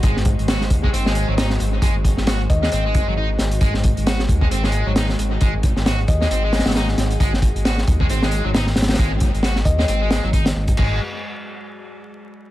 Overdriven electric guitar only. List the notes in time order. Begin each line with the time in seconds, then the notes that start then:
0.04 G#3
0.49 F#4
0.84 G#3
0.94 C4
1.06 G#3
1.29 F#3
1.38 D#4
1.83 G#3
2.27 F#4
2.63 G#3
2.72 C4
2.85 G#3
3.07 F#3
3.17 D#4
3.62 G#3
4.07 F#4
4.42 G#3
4.51 C4
4.64 G#3
4.87 F#3
4.96 D#4
5.42 G#3
5.86 F#4
6.21 G#3
6.31 C4
6.44 G#3
6.66 F#3
6.76 D#4
7.21 G#3
7.65 F#4
8.01 G#3
8.10 C4
8.23 G#3
8.45 F#3
8.55 D#4
8.99 G#3
9.44 F#4
9.79 G#3
9.89 C4
10.01 G#3
10.24 F#3
10.33 D#4
10.78 G#3